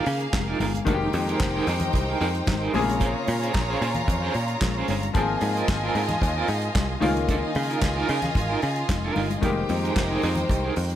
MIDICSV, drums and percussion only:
0, 0, Header, 1, 2, 480
1, 0, Start_track
1, 0, Tempo, 535236
1, 776, Time_signature, 4, 2, 24, 8
1, 9825, End_track
2, 0, Start_track
2, 0, Title_t, "Drums"
2, 55, Note_on_c, 9, 46, 60
2, 144, Note_off_c, 9, 46, 0
2, 180, Note_on_c, 9, 42, 40
2, 270, Note_off_c, 9, 42, 0
2, 295, Note_on_c, 9, 42, 67
2, 297, Note_on_c, 9, 36, 95
2, 300, Note_on_c, 9, 38, 109
2, 302, Note_on_c, 9, 39, 83
2, 304, Note_on_c, 9, 63, 70
2, 385, Note_off_c, 9, 42, 0
2, 387, Note_off_c, 9, 36, 0
2, 390, Note_off_c, 9, 38, 0
2, 392, Note_off_c, 9, 39, 0
2, 394, Note_off_c, 9, 63, 0
2, 541, Note_on_c, 9, 46, 65
2, 541, Note_on_c, 9, 63, 84
2, 631, Note_off_c, 9, 46, 0
2, 631, Note_off_c, 9, 63, 0
2, 668, Note_on_c, 9, 63, 65
2, 672, Note_on_c, 9, 42, 48
2, 757, Note_off_c, 9, 63, 0
2, 762, Note_off_c, 9, 42, 0
2, 776, Note_on_c, 9, 42, 65
2, 777, Note_on_c, 9, 36, 100
2, 779, Note_on_c, 9, 62, 55
2, 866, Note_off_c, 9, 42, 0
2, 867, Note_off_c, 9, 36, 0
2, 869, Note_off_c, 9, 62, 0
2, 1015, Note_on_c, 9, 46, 64
2, 1018, Note_on_c, 9, 62, 53
2, 1104, Note_off_c, 9, 46, 0
2, 1107, Note_off_c, 9, 62, 0
2, 1157, Note_on_c, 9, 42, 46
2, 1246, Note_off_c, 9, 42, 0
2, 1253, Note_on_c, 9, 42, 54
2, 1257, Note_on_c, 9, 36, 103
2, 1259, Note_on_c, 9, 38, 99
2, 1259, Note_on_c, 9, 63, 84
2, 1261, Note_on_c, 9, 39, 86
2, 1343, Note_off_c, 9, 42, 0
2, 1347, Note_off_c, 9, 36, 0
2, 1348, Note_off_c, 9, 63, 0
2, 1349, Note_off_c, 9, 38, 0
2, 1351, Note_off_c, 9, 39, 0
2, 1497, Note_on_c, 9, 46, 61
2, 1587, Note_off_c, 9, 46, 0
2, 1613, Note_on_c, 9, 64, 79
2, 1620, Note_on_c, 9, 42, 45
2, 1703, Note_off_c, 9, 64, 0
2, 1710, Note_off_c, 9, 42, 0
2, 1732, Note_on_c, 9, 62, 53
2, 1737, Note_on_c, 9, 36, 100
2, 1750, Note_on_c, 9, 42, 70
2, 1822, Note_off_c, 9, 62, 0
2, 1827, Note_off_c, 9, 36, 0
2, 1840, Note_off_c, 9, 42, 0
2, 1982, Note_on_c, 9, 46, 57
2, 2072, Note_off_c, 9, 46, 0
2, 2106, Note_on_c, 9, 42, 43
2, 2196, Note_off_c, 9, 42, 0
2, 2214, Note_on_c, 9, 63, 75
2, 2219, Note_on_c, 9, 36, 102
2, 2219, Note_on_c, 9, 42, 65
2, 2224, Note_on_c, 9, 38, 116
2, 2226, Note_on_c, 9, 39, 82
2, 2303, Note_off_c, 9, 63, 0
2, 2309, Note_off_c, 9, 36, 0
2, 2309, Note_off_c, 9, 42, 0
2, 2314, Note_off_c, 9, 38, 0
2, 2316, Note_off_c, 9, 39, 0
2, 2457, Note_on_c, 9, 63, 78
2, 2463, Note_on_c, 9, 46, 73
2, 2547, Note_off_c, 9, 63, 0
2, 2553, Note_off_c, 9, 46, 0
2, 2586, Note_on_c, 9, 63, 57
2, 2596, Note_on_c, 9, 42, 51
2, 2676, Note_off_c, 9, 63, 0
2, 2686, Note_off_c, 9, 42, 0
2, 2692, Note_on_c, 9, 62, 55
2, 2698, Note_on_c, 9, 42, 61
2, 2699, Note_on_c, 9, 36, 101
2, 2782, Note_off_c, 9, 62, 0
2, 2787, Note_off_c, 9, 42, 0
2, 2789, Note_off_c, 9, 36, 0
2, 2938, Note_on_c, 9, 46, 68
2, 2938, Note_on_c, 9, 62, 51
2, 3028, Note_off_c, 9, 46, 0
2, 3028, Note_off_c, 9, 62, 0
2, 3078, Note_on_c, 9, 42, 43
2, 3168, Note_off_c, 9, 42, 0
2, 3175, Note_on_c, 9, 63, 67
2, 3179, Note_on_c, 9, 42, 59
2, 3181, Note_on_c, 9, 36, 103
2, 3185, Note_on_c, 9, 38, 101
2, 3187, Note_on_c, 9, 39, 77
2, 3264, Note_off_c, 9, 63, 0
2, 3269, Note_off_c, 9, 42, 0
2, 3270, Note_off_c, 9, 36, 0
2, 3275, Note_off_c, 9, 38, 0
2, 3277, Note_off_c, 9, 39, 0
2, 3424, Note_on_c, 9, 46, 60
2, 3513, Note_off_c, 9, 46, 0
2, 3539, Note_on_c, 9, 64, 69
2, 3544, Note_on_c, 9, 42, 44
2, 3628, Note_off_c, 9, 64, 0
2, 3634, Note_off_c, 9, 42, 0
2, 3658, Note_on_c, 9, 36, 91
2, 3660, Note_on_c, 9, 62, 51
2, 3660, Note_on_c, 9, 64, 80
2, 3670, Note_on_c, 9, 42, 61
2, 3748, Note_off_c, 9, 36, 0
2, 3750, Note_off_c, 9, 62, 0
2, 3750, Note_off_c, 9, 64, 0
2, 3760, Note_off_c, 9, 42, 0
2, 3895, Note_on_c, 9, 46, 55
2, 3984, Note_off_c, 9, 46, 0
2, 4018, Note_on_c, 9, 42, 47
2, 4108, Note_off_c, 9, 42, 0
2, 4135, Note_on_c, 9, 42, 66
2, 4138, Note_on_c, 9, 36, 102
2, 4139, Note_on_c, 9, 38, 114
2, 4141, Note_on_c, 9, 39, 92
2, 4142, Note_on_c, 9, 63, 72
2, 4224, Note_off_c, 9, 42, 0
2, 4228, Note_off_c, 9, 36, 0
2, 4229, Note_off_c, 9, 38, 0
2, 4231, Note_off_c, 9, 39, 0
2, 4232, Note_off_c, 9, 63, 0
2, 4377, Note_on_c, 9, 46, 68
2, 4380, Note_on_c, 9, 63, 75
2, 4466, Note_off_c, 9, 46, 0
2, 4470, Note_off_c, 9, 63, 0
2, 4511, Note_on_c, 9, 42, 49
2, 4511, Note_on_c, 9, 63, 63
2, 4601, Note_off_c, 9, 42, 0
2, 4601, Note_off_c, 9, 63, 0
2, 4615, Note_on_c, 9, 42, 66
2, 4618, Note_on_c, 9, 36, 115
2, 4624, Note_on_c, 9, 62, 57
2, 4705, Note_off_c, 9, 42, 0
2, 4707, Note_off_c, 9, 36, 0
2, 4713, Note_off_c, 9, 62, 0
2, 4851, Note_on_c, 9, 46, 64
2, 4864, Note_on_c, 9, 62, 53
2, 4941, Note_off_c, 9, 46, 0
2, 4953, Note_off_c, 9, 62, 0
2, 4995, Note_on_c, 9, 42, 42
2, 5085, Note_off_c, 9, 42, 0
2, 5096, Note_on_c, 9, 42, 55
2, 5098, Note_on_c, 9, 36, 107
2, 5102, Note_on_c, 9, 38, 106
2, 5102, Note_on_c, 9, 63, 79
2, 5104, Note_on_c, 9, 39, 77
2, 5185, Note_off_c, 9, 42, 0
2, 5187, Note_off_c, 9, 36, 0
2, 5191, Note_off_c, 9, 38, 0
2, 5192, Note_off_c, 9, 63, 0
2, 5194, Note_off_c, 9, 39, 0
2, 5337, Note_on_c, 9, 46, 59
2, 5337, Note_on_c, 9, 62, 32
2, 5427, Note_off_c, 9, 46, 0
2, 5427, Note_off_c, 9, 62, 0
2, 5457, Note_on_c, 9, 42, 47
2, 5460, Note_on_c, 9, 64, 77
2, 5467, Note_on_c, 9, 38, 36
2, 5547, Note_off_c, 9, 42, 0
2, 5549, Note_off_c, 9, 64, 0
2, 5557, Note_off_c, 9, 38, 0
2, 5575, Note_on_c, 9, 36, 90
2, 5587, Note_on_c, 9, 62, 56
2, 5588, Note_on_c, 9, 42, 66
2, 5664, Note_off_c, 9, 36, 0
2, 5677, Note_off_c, 9, 62, 0
2, 5678, Note_off_c, 9, 42, 0
2, 5811, Note_on_c, 9, 46, 59
2, 5901, Note_off_c, 9, 46, 0
2, 5935, Note_on_c, 9, 42, 45
2, 6025, Note_off_c, 9, 42, 0
2, 6054, Note_on_c, 9, 42, 63
2, 6055, Note_on_c, 9, 36, 114
2, 6059, Note_on_c, 9, 38, 98
2, 6061, Note_on_c, 9, 39, 90
2, 6065, Note_on_c, 9, 63, 77
2, 6144, Note_off_c, 9, 42, 0
2, 6145, Note_off_c, 9, 36, 0
2, 6148, Note_off_c, 9, 38, 0
2, 6151, Note_off_c, 9, 39, 0
2, 6154, Note_off_c, 9, 63, 0
2, 6297, Note_on_c, 9, 63, 80
2, 6299, Note_on_c, 9, 46, 69
2, 6387, Note_off_c, 9, 63, 0
2, 6389, Note_off_c, 9, 46, 0
2, 6429, Note_on_c, 9, 42, 47
2, 6430, Note_on_c, 9, 63, 60
2, 6518, Note_off_c, 9, 42, 0
2, 6520, Note_off_c, 9, 63, 0
2, 6534, Note_on_c, 9, 36, 93
2, 6534, Note_on_c, 9, 42, 62
2, 6536, Note_on_c, 9, 62, 57
2, 6624, Note_off_c, 9, 36, 0
2, 6624, Note_off_c, 9, 42, 0
2, 6625, Note_off_c, 9, 62, 0
2, 6769, Note_on_c, 9, 46, 73
2, 6772, Note_on_c, 9, 62, 54
2, 6859, Note_off_c, 9, 46, 0
2, 6862, Note_off_c, 9, 62, 0
2, 6912, Note_on_c, 9, 42, 44
2, 7001, Note_off_c, 9, 42, 0
2, 7007, Note_on_c, 9, 63, 76
2, 7010, Note_on_c, 9, 42, 61
2, 7013, Note_on_c, 9, 36, 94
2, 7015, Note_on_c, 9, 38, 110
2, 7018, Note_on_c, 9, 39, 88
2, 7097, Note_off_c, 9, 63, 0
2, 7099, Note_off_c, 9, 42, 0
2, 7102, Note_off_c, 9, 36, 0
2, 7105, Note_off_c, 9, 38, 0
2, 7108, Note_off_c, 9, 39, 0
2, 7247, Note_on_c, 9, 62, 32
2, 7252, Note_on_c, 9, 46, 58
2, 7337, Note_off_c, 9, 62, 0
2, 7342, Note_off_c, 9, 46, 0
2, 7372, Note_on_c, 9, 42, 49
2, 7374, Note_on_c, 9, 64, 77
2, 7382, Note_on_c, 9, 38, 37
2, 7462, Note_off_c, 9, 42, 0
2, 7464, Note_off_c, 9, 64, 0
2, 7472, Note_off_c, 9, 38, 0
2, 7491, Note_on_c, 9, 36, 108
2, 7491, Note_on_c, 9, 62, 51
2, 7491, Note_on_c, 9, 64, 74
2, 7505, Note_on_c, 9, 42, 77
2, 7581, Note_off_c, 9, 36, 0
2, 7581, Note_off_c, 9, 62, 0
2, 7581, Note_off_c, 9, 64, 0
2, 7594, Note_off_c, 9, 42, 0
2, 7732, Note_on_c, 9, 46, 52
2, 7822, Note_off_c, 9, 46, 0
2, 7855, Note_on_c, 9, 42, 42
2, 7945, Note_off_c, 9, 42, 0
2, 7973, Note_on_c, 9, 42, 64
2, 7974, Note_on_c, 9, 36, 109
2, 7978, Note_on_c, 9, 38, 98
2, 7980, Note_on_c, 9, 39, 89
2, 7983, Note_on_c, 9, 63, 77
2, 8063, Note_off_c, 9, 36, 0
2, 8063, Note_off_c, 9, 42, 0
2, 8068, Note_off_c, 9, 38, 0
2, 8070, Note_off_c, 9, 39, 0
2, 8073, Note_off_c, 9, 63, 0
2, 8213, Note_on_c, 9, 63, 86
2, 8221, Note_on_c, 9, 46, 70
2, 8303, Note_off_c, 9, 63, 0
2, 8310, Note_off_c, 9, 46, 0
2, 8344, Note_on_c, 9, 63, 60
2, 8346, Note_on_c, 9, 42, 51
2, 8434, Note_off_c, 9, 63, 0
2, 8436, Note_off_c, 9, 42, 0
2, 8454, Note_on_c, 9, 36, 95
2, 8455, Note_on_c, 9, 42, 62
2, 8455, Note_on_c, 9, 62, 55
2, 8544, Note_off_c, 9, 36, 0
2, 8544, Note_off_c, 9, 42, 0
2, 8545, Note_off_c, 9, 62, 0
2, 8691, Note_on_c, 9, 46, 64
2, 8698, Note_on_c, 9, 62, 56
2, 8781, Note_off_c, 9, 46, 0
2, 8788, Note_off_c, 9, 62, 0
2, 8835, Note_on_c, 9, 42, 46
2, 8925, Note_off_c, 9, 42, 0
2, 8931, Note_on_c, 9, 42, 53
2, 8934, Note_on_c, 9, 36, 96
2, 8935, Note_on_c, 9, 63, 72
2, 8937, Note_on_c, 9, 38, 101
2, 8939, Note_on_c, 9, 39, 82
2, 9021, Note_off_c, 9, 42, 0
2, 9023, Note_off_c, 9, 36, 0
2, 9025, Note_off_c, 9, 63, 0
2, 9027, Note_off_c, 9, 38, 0
2, 9029, Note_off_c, 9, 39, 0
2, 9167, Note_on_c, 9, 62, 34
2, 9176, Note_on_c, 9, 46, 60
2, 9256, Note_off_c, 9, 62, 0
2, 9265, Note_off_c, 9, 46, 0
2, 9286, Note_on_c, 9, 64, 75
2, 9299, Note_on_c, 9, 42, 47
2, 9376, Note_off_c, 9, 64, 0
2, 9389, Note_off_c, 9, 42, 0
2, 9412, Note_on_c, 9, 36, 99
2, 9412, Note_on_c, 9, 62, 53
2, 9423, Note_on_c, 9, 42, 67
2, 9501, Note_off_c, 9, 62, 0
2, 9502, Note_off_c, 9, 36, 0
2, 9513, Note_off_c, 9, 42, 0
2, 9652, Note_on_c, 9, 46, 65
2, 9742, Note_off_c, 9, 46, 0
2, 9774, Note_on_c, 9, 42, 37
2, 9825, Note_off_c, 9, 42, 0
2, 9825, End_track
0, 0, End_of_file